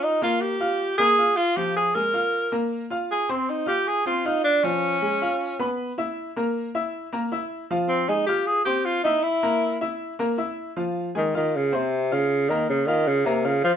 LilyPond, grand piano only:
\new Staff \with { instrumentName = "Grand piano" } { \time 4/4 \key f \minor \tempo 4 = 156 <f' f'' f'''>8 <bes bes' bes''>4 <f' f'' f'''>4 <bes bes' bes''>8 <f' f'' f'''>4 | <f f' f''>4 <aes aes' aes''>8 <f' f'' f'''>4 <bes bes' bes''>4 <f' f'' f'''>8~ | <f' f'' f'''>8 <c' c'' c'''>4 <f' f'' f'''>4 <c' c'' c'''>8 <f' f'' f'''>4 | <f f' f''>4 <aes aes' aes''>8 <f' f'' f'''>4 <ces' ces'' ces'''>4 <e' e'' e'''>8~ |
<e' e'' e'''>8 <bes bes' bes''>4 <e' e'' e'''>4 <bes bes' bes''>8 <e' e'' e'''>4 | <f f' f''>4 <aes aes' aes''>8 <f' f'' f'''>4 <c' c'' c'''>4 <e' e'' e'''>8~ | <e' e'' e'''>8 <bes bes' bes''>4 <e' e'' e'''>4 <bes bes' bes''>8 <e' e'' e'''>4 | <f f' f''>4 <aes aes' aes''>8 <f' f'' f'''>4 <c' c'' c'''>4 <f' f'' f'''>8~ |
<f' f'' f'''>8 <bes bes' bes''>4 <f' f'' f'''>4 <bes bes' bes''>8 <f' f'' f'''>4 | }